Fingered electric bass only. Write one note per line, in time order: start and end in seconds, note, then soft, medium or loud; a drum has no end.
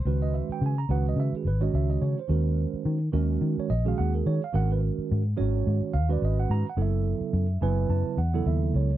0.05 0.41 C#2 medium
0.49 muted fingered electric bass stroke soft
0.62 0.84 C#3 medium
0.89 1.12 C#2 medium
1.16 1.29 C#3 medium
1.33 muted fingered electric bass stroke soft
1.45 1.68 G#1 medium
1.74 1.96 C#2 medium
2.02 2.14 C#3 medium
2.29 2.65 D#2 medium
2.74 muted fingered electric bass stroke soft
2.85 3.08 D#3 medium
3.13 3.36 D#2 medium
3.41 3.54 D#3 medium
3.58 muted fingered electric bass stroke soft
3.70 3.93 A#1 medium
3.99 4.22 D#2 loud
4.26 4.39 D#3 medium
4.54 4.89 G#1 medium
4.98 muted fingered electric bass stroke soft
5.12 5.34 G#2 medium
5.40 5.62 G#1 medium
5.67 5.79 G#2 medium
5.81 muted fingered electric bass stroke soft
5.94 6.17 D#2 medium
6.22 6.45 G#1 loud
6.50 6.62 G#2 medium
6.77 7.12 F#1 medium
7.21 muted fingered electric bass stroke soft
7.33 7.56 F#2 medium
7.62 7.85 F#1 medium
7.89 8.02 F#2 medium
8.05 muted fingered electric bass stroke soft
8.17 8.43 E2 medium
8.46 8.72 D#2 medium
8.74 8.97 C#2 medium